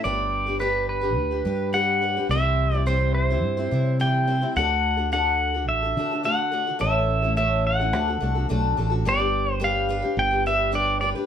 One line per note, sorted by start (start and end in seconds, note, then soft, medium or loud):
0.04 1.17 G1 medium
0.04 0.47 G3 medium
0.04 0.47 D4 medium
0.04 0.47 G4 medium
0.04 0.45 B4 medium
0.04 0.57 D5 medium
0.46 0.60 D4 soft
0.46 0.60 G4 soft
0.46 0.60 B4 soft
0.59 1.03 G3 medium
0.59 1.03 D4 medium
0.59 1.02 G4 medium
0.59 0.88 B4 medium
0.59 1.00 B4 medium
0.89 1.76 B4 medium
1.01 1.32 D4 soft
1.01 1.31 G4 soft
1.01 1.30 B4 soft
1.17 1.41 D2 medium
1.31 1.44 D4 soft
1.31 1.46 G4 soft
1.31 1.45 B4 soft
1.45 2.18 G2 medium
1.45 1.72 G3 medium
1.45 1.72 D4 medium
1.45 1.73 G4 medium
1.45 1.74 B4 medium
1.73 2.00 G3 medium
1.73 2.01 D4 medium
1.73 2.01 G4 medium
1.73 2.02 B4 medium
1.73 2.26 F#5 medium
2.01 2.16 G3 medium
2.01 2.16 D4 medium
2.01 2.16 G4 medium
2.01 2.15 B4 medium
2.17 2.31 D4 soft
2.17 2.31 G4 soft
2.17 2.31 B4 soft
2.29 3.43 C2 medium
2.29 2.73 C3 medium
2.29 2.73 E3 medium
2.29 2.73 G3 medium
2.29 2.73 C4 medium
2.29 2.72 E4 medium
2.29 2.71 C5 medium
2.29 2.76 E5 medium
2.72 2.86 G3 soft
2.72 2.86 C4 soft
2.72 2.86 E4 soft
2.72 2.86 C5 soft
2.76 2.89 D5 medium
2.86 3.29 C3 medium
2.86 3.29 E3 medium
2.86 3.29 G3 medium
2.86 3.29 C4 medium
2.86 3.29 E4 medium
2.86 3.13 C5 medium
2.86 3.29 C5 medium
3.15 4.02 C5 medium
3.30 3.59 G3 soft
3.30 3.58 C4 soft
3.30 3.57 E4 soft
3.30 3.56 C5 soft
3.43 3.67 G2 medium
3.57 3.70 G3 soft
3.57 3.71 C4 soft
3.57 3.72 E4 medium
3.57 3.71 C5 medium
3.71 4.44 C3 medium
3.71 3.99 G3 medium
3.71 3.99 C4 medium
3.71 4.00 E4 medium
3.71 4.00 C5 medium
4.00 4.28 C3 medium
4.00 4.28 E3 medium
4.00 4.26 G3 medium
4.00 4.27 C4 medium
4.00 4.27 E4 medium
4.00 4.28 C5 medium
4.00 4.53 G5 medium
4.27 4.42 G3 medium
4.27 4.42 C4 medium
4.27 4.41 E4 medium
4.27 4.40 C5 medium
4.41 4.57 G3 soft
4.41 4.56 C4 soft
4.41 4.56 E4 medium
4.41 4.56 C5 medium
4.56 5.69 D2 medium
4.56 4.98 D3 medium
4.56 4.99 A3 medium
4.56 4.98 D4 medium
4.56 4.97 F#4 medium
4.56 4.96 A4 medium
4.56 5.12 F#5 medium
4.97 5.12 D4 soft
4.97 5.12 F#4 soft
4.97 5.12 A4 medium
5.12 5.54 D3 medium
5.12 5.55 A3 medium
5.12 5.55 D4 medium
5.12 5.54 F#4 medium
5.12 5.53 A4 medium
5.12 5.68 F#5 medium
5.54 5.84 D4 soft
5.54 5.83 F#4 soft
5.54 5.81 A4 soft
5.69 5.93 A1 loud
5.69 6.25 E5 medium
5.83 5.97 D4 soft
5.83 5.98 F#4 soft
5.83 5.97 A4 soft
5.97 6.69 D3 medium
5.97 6.11 A3 medium
5.97 6.12 D4 medium
5.97 6.11 F#4 medium
5.97 6.10 A4 medium
6.11 6.23 D4 soft
6.11 6.24 F#4 soft
6.11 6.25 A4 soft
6.23 6.52 D3 medium
6.23 6.50 A3 medium
6.23 6.52 D4 medium
6.23 6.52 F#4 medium
6.23 6.54 A4 medium
6.23 6.81 F#5 medium
6.52 6.66 A3 medium
6.52 6.67 D4 medium
6.52 6.67 F#4 medium
6.52 6.66 A4 medium
6.67 6.79 D4 soft
6.67 6.80 F#4 soft
6.67 6.79 A4 soft
6.79 7.93 A1 medium
6.79 7.22 A2 medium
6.79 7.22 E3 medium
6.79 7.23 A3 medium
6.79 7.23 C#4 medium
6.79 7.22 E4 medium
6.79 7.21 A4 medium
6.79 7.36 E5 medium
7.22 7.36 A3 soft
7.22 7.37 C#4 soft
7.22 7.37 E4 soft
7.22 7.37 A4 soft
7.37 7.79 A2 medium
7.37 7.79 E3 medium
7.37 7.80 A3 medium
7.37 7.80 C#4 medium
7.37 7.80 E4 medium
7.37 7.78 A4 medium
7.37 7.66 E5 medium
7.67 8.46 F#5 medium
7.80 7.92 A3 soft
7.80 7.93 C#4 soft
7.80 7.94 E4 soft
7.80 7.94 A4 soft
7.93 8.17 D2 medium
7.93 8.07 D3 medium
7.93 8.07 A3 medium
7.93 8.08 D4 medium
7.93 8.08 F#4 medium
7.93 8.07 A4 medium
8.08 8.21 D4 soft
8.08 8.21 F#4 soft
8.08 8.22 A4 soft
8.20 8.47 C2 medium
8.20 8.35 A3 medium
8.20 8.36 D4 medium
8.20 8.36 F#4 medium
8.20 8.34 A4 medium
8.35 8.49 D4 soft
8.35 8.50 F#4 soft
8.35 8.50 A4 soft
8.49 8.75 B1 medium
8.49 8.78 D3 medium
8.49 8.76 A3 medium
8.49 8.76 D4 medium
8.49 8.77 F#4 medium
8.49 8.78 A4 medium
8.77 9.03 A1 medium
8.77 8.91 A3 medium
8.77 8.91 D4 medium
8.77 8.90 F#4 medium
8.77 8.89 A4 medium
8.90 9.05 D4 soft
8.90 9.06 F#4 soft
8.90 9.05 A4 medium
9.05 10.02 G1 loud
9.05 9.20 G3 medium
9.05 9.20 D4 medium
9.05 9.18 G4 medium
9.05 9.17 B4 medium
9.05 9.53 D5 medium
9.18 9.60 D4 soft
9.18 9.60 G4 soft
9.18 9.60 B4 medium
9.53 9.64 C5 medium
9.60 9.88 G3 medium
9.60 9.88 D4 medium
9.60 9.89 G4 medium
9.60 9.89 B4 medium
9.64 10.21 F5 medium
9.89 10.03 G3 medium
9.89 10.04 D4 medium
9.89 10.03 G4 medium
9.89 10.01 B4 medium
10.02 10.33 D4 soft
10.02 10.31 G4 soft
10.02 10.30 B4 medium
10.17 11.13 G1 medium
10.17 10.45 G5 loud
10.31 10.45 D4 soft
10.31 10.46 G4 soft
10.31 10.45 B4 medium
10.46 10.70 G3 medium
10.46 10.71 D4 medium
10.46 10.73 G4 medium
10.46 10.73 B4 medium
10.46 10.75 E5 medium
10.72 10.99 G3 medium
10.72 11.00 D4 medium
10.72 11.01 G4 medium
10.72 11.02 B4 medium
10.72 11.00 D5 medium
11.01 11.15 G3 medium
11.01 11.16 D4 medium
11.01 11.15 G4 medium
11.01 11.14 B4 medium
11.01 11.09 D5 medium
11.15 11.26 D4 soft
11.15 11.26 G4 soft
11.15 11.26 B4 medium